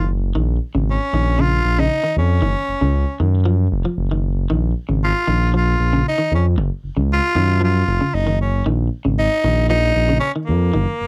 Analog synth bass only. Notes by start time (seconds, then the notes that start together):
Already playing: F#1
0.35 A#1
0.75 G#1
1.13 A#1
1.65 A#1
2.17 F2
2.42 F#1
2.68 F#1
2.82 C#2
3.20 F#2
3.72 F1
3.98 F#1
4.11 F#1
4.50 A#1
4.89 G#1
5.28 A#1
5.80 A#1
6.32 F2
6.58 F#1
6.84 F#1
6.97 C#2
7.35 F#2
7.88 F1
8.14 F#1
8.27 F#1
8.66 A#1
9.05 G#1
9.44 A#1
9.96 A#1
10.49 F2
10.75 F#1
11.01 F#1